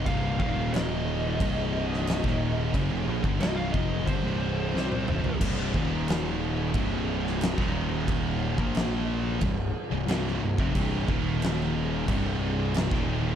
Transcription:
<<
  \new Staff \with { instrumentName = "Lead electric guitar" } { \time 4/4 \key c \minor \tempo 4 = 90 f''8 f''8 ees''2. | r4 ees''16 f''16 ees''8 c''2 | r1 | r1 |
r1 | }
  \new Staff \with { instrumentName = "Distorted electric guitar" } { \clef bass \time 4/4 \key c \minor <c, g, c>8 <ees, bes, ees>4. <c, g, c>4~ <c, g, c>16 <ees, bes, ees>8. | <fis, des>16 <f, c>16 <bes, f>16 <g, d>16 <c, g, c>8 <f, c f>8 <g, d>16 <c, g, c>8. <c g c'>8 <c, g,>16 <bes, f>16 | <c, g, c>8 <ees, bes, ees>4. <c, g, c>4~ <c, g, c>16 <ees, bes, ees>8.~ | <ees, bes, ees>8. <bes, f bes>4~ <bes, f bes>16 <c, g,>8 r16 <c, g,>16 <c, g, c>8 <c, g,>16 <f, c>16 |
<c, g, c>8 <ees, bes, ees>4. <c, g, c>4~ <c, g, c>16 <ees, bes, ees>8. | }
  \new Staff \with { instrumentName = "Distorted electric guitar" } { \clef bass \time 4/4 \key c \minor <c, g, c>8 <ees, bes, ees>4. <c, g, c>4~ <c, g, c>16 <ees, bes, ees>8. | <fis, des>16 <f, c>16 <bes, f>16 <g, d>16 <c, g, c>8 <f, c f>8 <g, d>16 <c, g, c>8. <c g c'>8 <c, g,>16 <bes, f>16 | <c, g, c>8 <ees, bes, ees>4. <c, g, c>4~ <c, g, c>16 <ees, bes, ees>8.~ | <ees, bes, ees>8. <bes, f bes>4~ <bes, f bes>16 <c, g,>8 r16 <c, g,>16 <c, g, c>8 <c, g,>16 <f, c>16 |
<c, g, c>8 <ees, bes, ees>4. <c, g, c>4~ <c, g, c>16 <ees, bes, ees>8. | }
  \new Staff \with { instrumentName = "Distorted electric guitar" } { \clef bass \time 4/4 \key c \minor <c, g, c>8 <ees, bes, ees>4. <c, g, c>4~ <c, g, c>16 <ees, bes, ees>8. | <fis, des>16 <f, c>16 <bes, f>16 <g, d>16 <c, g, c>8 <f, c f>8 <g, d>16 <c, g, c>8. <c g c'>8 <c, g,>16 <bes, f>16 | <c, g, c>8 <ees, bes, ees>4. <c, g, c>4~ <c, g, c>16 <ees, bes, ees>8.~ | <ees, bes, ees>8. <bes, f bes>4~ <bes, f bes>16 <c, g,>8 r16 <c, g,>16 <c, g, c>8 <c, g,>16 <f, c>16 |
<c, g, c>8 <ees, bes, ees>4. <c, g, c>4~ <c, g, c>16 <ees, bes, ees>8. | }
  \new Staff \with { instrumentName = "Picked electric bass" } { \clef bass \time 4/4 \key c \minor c,,8 ees,,4. c,,4~ c,,16 ees,,8. | fis,,16 f,,16 bes,,16 g,,16 c,,8 f,,8 g,,16 c,,8. c,8 c,,16 bes,,16 | c,,8 ees,,4. c,,4~ c,,16 ees,,8.~ | ees,,8. bes,,4~ bes,,16 c,,8 r16 c,,16 c,,8 c,,16 f,,16 |
c,,8 ees,,4. c,,4~ c,,16 ees,,8. | }
  \new DrumStaff \with { instrumentName = "Drums" } \drummode { \time 4/4 <cymc bd>8 bd8 <cymc sn>4 <cymc bd>8. sn16 <cymc sn>16 <bd sn>8. | <cymc bd>8. bd16 <cymc sn>8 bd8 <cymc bd>4 sn16 tommh16 toml16 tomfh16 | <cymc bd>8 bd8 <cymc sn>4 <cymc bd>8. sn16 <cymc sn>16 <bd sn>8. | <cymc bd>8. bd16 <cymc sn>4 <cymc bd>4 <cymc sn>16 sn8 bd16 |
<cymc bd>8 bd8 <cymc sn>4 <cymc bd>4 <cymc sn>16 <bd sn>8. | }
>>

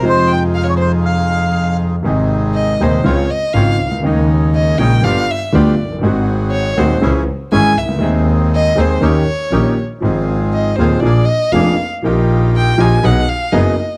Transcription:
<<
  \new Staff \with { instrumentName = "Bandoneon" } { \time 4/4 \key f \minor \tempo 4 = 120 c''8 g''8 f''16 des''16 c''8 f''4. r8 | \key aes \major r1 | r1 | r1 |
r1 | r1 | r1 | }
  \new Staff \with { instrumentName = "Violin" } { \time 4/4 \key f \minor c''8 g''8 f''16 des''16 c''8 f''4. r8 | \key aes \major r4 ees''8 c''8 des''8 ees''8 f''8. r16 | r4 ees''8 g''8 f''8 fes''8 d''8. r16 | r4 des''8 c''8 r4 aes''8 fes''8 |
r4 ees''8 c''8 des''4. r8 | r4 ees''8 c''8 d''8 ees''8 f''8. r16 | r4 g''8 aes''8 fis''8 f''8 dis''8. r16 | }
  \new Staff \with { instrumentName = "Bandoneon" } { \time 4/4 \key f \minor <ees' f' aes'>1 | \key aes \major <c' ees' aes'>4. <c' ees' aes'>8 <c' des' f'>8 r8 <c' des' f'>8 r8 | <des' ees' aes'>4. <des' ees' aes'>8 <b f' g'>8 r8 <b f' g'>8 r8 | <c' ges' aes'>4. <c' ges' aes'>8 <des' fes' aes'>8 r8 <des' fes' aes'>8 r8 |
<c' ees' aes'>4. <c' ees' aes'>8 <des' ees' g'>8 r8 <des' ees' g'>8 r8 | <c' f' aes'>4. <c' f' aes'>8 <bes d' aes'>8 r8 <bes d' aes'>8 r8 | <ees' f' g'>4. <ees' f' g'>8 <b dis' gis'>8 r8 <b dis' gis'>8 r8 | }
  \new Staff \with { instrumentName = "Grand piano" } { \clef bass \time 4/4 \key f \minor <f, c f aes ees'>1 | \key aes \major <aes,, aes, c ees aes ees'>4. <ees,, ees, c ees aes ees'>8 <des, des aes c' f'>8 r8 <aes,, aes, des aes c' f'>8 r32 c,32 des,32 d,32 | <ees, des ees aes bes ees'>4. <bes,, bes, des aes bes ees'>8 <g,, g, d g b f'>8 r8 <d, d g b f'>8 r32 f,,32 ges,,32 g,,32 | <aes,, aes, ees aes c' ges'>4. <ees,, ees, ees aes c' ges'>8 <des, des fes aes des' aes'>8 r8 <aes,, aes, fes aes des' aes'>8 r32 c,32 des,32 d,32 |
<ees, ees aes c' aes'>4. <ees, ees aes c' aes'>8 <ees, ees bes des' g'>8 r8 <bes,, bes, ees bes des' g'>8 r8 | <aes,, aes, f c' ees' aes'>4. <ees,, ees, f c' ees' aes'>8 <bes,, bes, f bes d' aes'>8 r8 <f,, f, f bes d' aes'>8 r8 | <bes,, bes, f bes ees' g'>4. <bes,, bes, f bes ees' g'>8 <b,, b, fis b dis' gis'>8 r8 <fis,, fis, fis b dis' gis'>8 r8 | }
  \new Staff \with { instrumentName = "Double bass" } { \clef bass \time 4/4 \key f \minor f,1 | \key aes \major aes,,4. ees,8 des,8 r8 aes,,8 des,8 | ees,4. bes,,8 g,,8 r8 d,8 ges,,8 | aes,,4. ees,8 des,8 r8 aes,,8 des,8 |
ees,4. ees,8 ees,8 r8 bes,,8 r8 | aes,,4. ees,8 bes,,8 r8 f,,8 r8 | bes,,4. bes,,8 b,,8 r8 fis,,8 r8 | }
>>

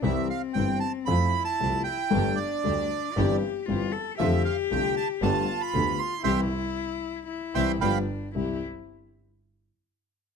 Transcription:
<<
  \new Staff \with { instrumentName = "Bandoneon" } { \time 4/4 \key c \major \tempo 4 = 116 e''8 f''8 g''8 a''8 b''8. a''8. g''8~ | g''8 d''2 r4. | e''8 f''8 g''8 a''8 a''8. b''8. c'''8 | <e'' g'' c'''>8 r2 <e'' g'' c'''>8 <f'' g'' b''>8 r8 |
r1 | }
  \new Staff \with { instrumentName = "Cello" } { \time 4/4 \key c \major c'2 e'2 | d'2 g'4 f'8 a'8 | g'2 f'2 | e'2 e'4 d'4 |
e'8 r2. r8 | }
  \new Staff \with { instrumentName = "String section" } { \time 4/4 \key c \major <g c' e'>8 r8 <g c' e'>8 r8 <a c' f'>8 r8 <a c' f'>8 r8 | <a d' g'>8 r8 <a d' g'>8 r8 <c' e' g'>8 r8 <c' e' g'>8 r8 | <d' f' a'>8 r8 <d' f' a'>8 r8 <b g' a'>8 r8 <b g' a'>8 r8 | <c' e' g'>8 r2 <c' e' g'>8 <d' f' g'>8 r8 |
<c' e' g'>8 r2. r8 | }
  \new Staff \with { instrumentName = "Grand piano" } { \clef bass \time 4/4 \key c \major <c, c e g c' g'>8 r8 <g,, g, e g c' g'>8 r8 <f, f a c' a'>8 r8 <c, c f a c' a'>8 r8 | <g,, g, g a d' a'>8 r8 <d, d g a d' a'>8 r8 <g,, g, e g c' g'>8 r8 <g,, g, e g c' g'>8 r8 | <f, d f a c' f'>8 r8 <c, c d a c' f'>8 r8 <g,, g, d a b g'>8 r8 <d, d a b g'>8 r8 | <e g c'>8 r2 <e g c'>8 <f g b>8 r8 |
<c, g c' e'>8 r2. r8 | }
  \new Staff \with { instrumentName = "Double bass" } { \clef bass \time 4/4 \key c \major c,8 r8 g,,8 r8 f,8 r8 c,8 r8 | g,,8 r8 d,8 r8 g,,8 r8 g,,8 r8 | f,8 r8 c,8 r8 g,,8 r8 d,8 r8 | c,8 r2 c,8 g,,8 r8 |
c,8 r2. r8 | }
>>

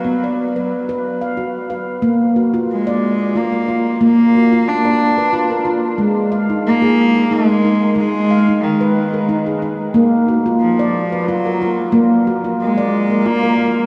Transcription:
<<
  \new Staff \with { instrumentName = "Handpan" } { \time 3/4 \tempo 4 = 91 << { f''16 d''8. r8. f''8. f''8~ | f''16 r16 ges'8. r4 bes'8. | r8 ges'8. r8 ces''8 bes'8. | r8 f''8. r8 bes'8 aes'8. |
r8 f''8. r8 bes'8 aes'8. | r8 ges'8. r8 ces''8 bes'8. | r8 ges'8. r8 bes'8 bes'8. | } \\ { r8. b'8 b'8 r16 fis'8 b'8 | r8. f'8 d''8 r16 f'8 f'8 | r8. f'8 d''8 r16 f'8 f'8 | aes8 r16 ees'8 aes'8 r16 ees'8 ees'8 |
r8. ees'8 ces''8 r16 ees'8 ees'8 | r8. f'8 d''8 r16 f'8 f'8 | r8. f'8 d''8 r16 f'8 f'8 | } >> }
  \new Staff \with { instrumentName = "Handpan" } { \time 3/4 b2 r4 | bes2 r4 | bes2 r4 | r2. |
aes2 r4 | bes2 r4 | bes2 r4 | }
  \new Staff \with { instrumentName = "Cello" } { \clef bass \time 3/4 fis2 r4 | r4 aes4 bes4 | bes4 d'4. r8 | r4 bes4 aes4 |
aes4 ees4. r8 | r4 f4 ges4 | r4 aes4 bes4 | }
>>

